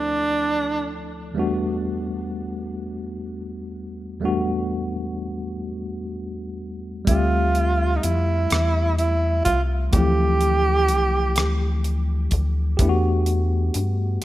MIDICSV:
0, 0, Header, 1, 5, 480
1, 0, Start_track
1, 0, Tempo, 952381
1, 684, Time_signature, 6, 3, 24, 8
1, 7177, End_track
2, 0, Start_track
2, 0, Title_t, "Tenor saxophone"
2, 0, Program_c, 0, 66
2, 0, Note_on_c, 0, 62, 96
2, 484, Note_off_c, 0, 62, 0
2, 3567, Note_on_c, 0, 65, 82
2, 4014, Note_on_c, 0, 63, 56
2, 4022, Note_off_c, 0, 65, 0
2, 4046, Note_on_c, 0, 64, 77
2, 4054, Note_off_c, 0, 63, 0
2, 4521, Note_off_c, 0, 64, 0
2, 4524, Note_on_c, 0, 64, 78
2, 4747, Note_off_c, 0, 64, 0
2, 4762, Note_on_c, 0, 65, 81
2, 4842, Note_off_c, 0, 65, 0
2, 5003, Note_on_c, 0, 67, 93
2, 5943, Note_off_c, 0, 67, 0
2, 7177, End_track
3, 0, Start_track
3, 0, Title_t, "Tine electric piano"
3, 0, Program_c, 1, 4
3, 0, Control_c, 1, 64, 127
3, 0, Note_on_c, 1, 38, 51
3, 0, Note_on_c, 1, 53, 47
3, 0, Note_on_c, 1, 57, 47
3, 0, Note_on_c, 1, 60, 48
3, 0, Note_on_c, 1, 64, 49
3, 0, Note_on_c, 1, 69, 60
3, 656, Note_off_c, 1, 38, 0
3, 659, Note_off_c, 1, 53, 0
3, 663, Note_off_c, 1, 57, 0
3, 665, Note_off_c, 1, 60, 0
3, 669, Note_off_c, 1, 64, 0
3, 671, Note_off_c, 1, 69, 0
3, 675, Note_on_c, 1, 40, 65
3, 679, Note_on_c, 1, 55, 57
3, 686, Note_on_c, 1, 57, 60
3, 690, Control_c, 1, 64, 0
3, 692, Note_on_c, 1, 59, 58
3, 695, Note_on_c, 1, 62, 55
3, 702, Note_on_c, 1, 66, 68
3, 792, Control_c, 1, 64, 127
3, 2100, Note_off_c, 1, 40, 0
3, 2102, Note_off_c, 1, 55, 0
3, 2105, Note_off_c, 1, 57, 0
3, 2108, Note_off_c, 1, 59, 0
3, 2110, Note_off_c, 1, 62, 0
3, 2113, Note_off_c, 1, 66, 0
3, 2116, Note_on_c, 1, 40, 63
3, 2121, Note_on_c, 1, 55, 57
3, 2125, Note_on_c, 1, 57, 60
3, 2133, Note_on_c, 1, 59, 56
3, 2138, Note_on_c, 1, 62, 56
3, 2143, Note_on_c, 1, 66, 69
3, 3540, Note_off_c, 1, 40, 0
3, 3543, Note_off_c, 1, 55, 0
3, 3545, Note_off_c, 1, 57, 0
3, 3549, Note_off_c, 1, 59, 0
3, 3551, Note_off_c, 1, 62, 0
3, 3552, Note_on_c, 1, 55, 56
3, 3554, Note_off_c, 1, 66, 0
3, 3561, Note_on_c, 1, 57, 48
3, 3569, Note_on_c, 1, 60, 47
3, 3570, Control_c, 1, 64, 0
3, 3575, Note_on_c, 1, 76, 47
3, 3583, Note_on_c, 1, 67, 58
3, 3649, Control_c, 1, 64, 127
3, 4978, Note_off_c, 1, 55, 0
3, 4982, Note_off_c, 1, 57, 0
3, 4986, Note_off_c, 1, 60, 0
3, 4990, Note_off_c, 1, 76, 0
3, 4993, Note_off_c, 1, 67, 0
3, 4995, Note_on_c, 1, 52, 43
3, 5003, Note_on_c, 1, 57, 51
3, 5010, Note_on_c, 1, 60, 47
3, 5018, Note_on_c, 1, 64, 48
3, 5024, Note_on_c, 1, 67, 55
3, 5029, Note_on_c, 1, 53, 54
3, 5032, Note_off_c, 1, 52, 0
3, 6424, Note_off_c, 1, 57, 0
3, 6427, Note_off_c, 1, 60, 0
3, 6431, Note_off_c, 1, 64, 0
3, 6431, Note_off_c, 1, 67, 0
3, 6437, Note_off_c, 1, 53, 0
3, 6437, Note_on_c, 1, 67, 65
3, 6445, Note_on_c, 1, 57, 58
3, 6450, Control_c, 1, 64, 0
3, 6451, Note_on_c, 1, 59, 58
3, 6459, Note_on_c, 1, 62, 57
3, 6464, Note_on_c, 1, 64, 61
3, 6487, Note_off_c, 1, 64, 0
3, 6497, Note_on_c, 1, 66, 74
3, 6545, Control_c, 1, 64, 127
3, 7177, Note_off_c, 1, 57, 0
3, 7177, Note_off_c, 1, 59, 0
3, 7177, Note_off_c, 1, 62, 0
3, 7177, Note_off_c, 1, 66, 0
3, 7177, Note_off_c, 1, 67, 0
3, 7177, End_track
4, 0, Start_track
4, 0, Title_t, "Analog synth bass"
4, 0, Program_c, 2, 38
4, 3568, Note_on_c, 2, 38, 90
4, 4026, Note_off_c, 2, 38, 0
4, 4053, Note_on_c, 2, 41, 77
4, 4268, Note_off_c, 2, 41, 0
4, 4293, Note_on_c, 2, 40, 84
4, 4749, Note_off_c, 2, 40, 0
4, 4772, Note_on_c, 2, 36, 82
4, 4988, Note_off_c, 2, 36, 0
4, 5010, Note_on_c, 2, 38, 102
4, 5497, Note_on_c, 2, 36, 83
4, 5504, Note_off_c, 2, 38, 0
4, 5736, Note_on_c, 2, 38, 91
4, 5743, Note_off_c, 2, 36, 0
4, 6190, Note_off_c, 2, 38, 0
4, 6214, Note_on_c, 2, 38, 87
4, 6429, Note_off_c, 2, 38, 0
4, 6450, Note_on_c, 2, 40, 105
4, 6907, Note_off_c, 2, 40, 0
4, 6933, Note_on_c, 2, 43, 79
4, 7149, Note_off_c, 2, 43, 0
4, 7177, End_track
5, 0, Start_track
5, 0, Title_t, "Drums"
5, 3564, Note_on_c, 9, 42, 59
5, 3565, Note_on_c, 9, 36, 102
5, 3615, Note_off_c, 9, 36, 0
5, 3615, Note_off_c, 9, 42, 0
5, 3805, Note_on_c, 9, 42, 44
5, 3855, Note_off_c, 9, 42, 0
5, 4049, Note_on_c, 9, 42, 65
5, 4099, Note_off_c, 9, 42, 0
5, 4286, Note_on_c, 9, 42, 68
5, 4296, Note_on_c, 9, 37, 95
5, 4336, Note_off_c, 9, 42, 0
5, 4347, Note_off_c, 9, 37, 0
5, 4528, Note_on_c, 9, 42, 45
5, 4579, Note_off_c, 9, 42, 0
5, 4764, Note_on_c, 9, 42, 58
5, 4768, Note_on_c, 9, 36, 81
5, 4814, Note_off_c, 9, 42, 0
5, 4818, Note_off_c, 9, 36, 0
5, 5003, Note_on_c, 9, 42, 62
5, 5005, Note_on_c, 9, 36, 104
5, 5053, Note_off_c, 9, 42, 0
5, 5056, Note_off_c, 9, 36, 0
5, 5245, Note_on_c, 9, 42, 44
5, 5295, Note_off_c, 9, 42, 0
5, 5486, Note_on_c, 9, 42, 64
5, 5536, Note_off_c, 9, 42, 0
5, 5724, Note_on_c, 9, 42, 68
5, 5734, Note_on_c, 9, 37, 102
5, 5774, Note_off_c, 9, 42, 0
5, 5785, Note_off_c, 9, 37, 0
5, 5969, Note_on_c, 9, 42, 45
5, 6020, Note_off_c, 9, 42, 0
5, 6204, Note_on_c, 9, 42, 54
5, 6208, Note_on_c, 9, 36, 76
5, 6254, Note_off_c, 9, 42, 0
5, 6259, Note_off_c, 9, 36, 0
5, 6446, Note_on_c, 9, 36, 109
5, 6446, Note_on_c, 9, 42, 64
5, 6496, Note_off_c, 9, 42, 0
5, 6497, Note_off_c, 9, 36, 0
5, 6684, Note_on_c, 9, 42, 44
5, 6735, Note_off_c, 9, 42, 0
5, 6926, Note_on_c, 9, 42, 68
5, 6976, Note_off_c, 9, 42, 0
5, 7177, End_track
0, 0, End_of_file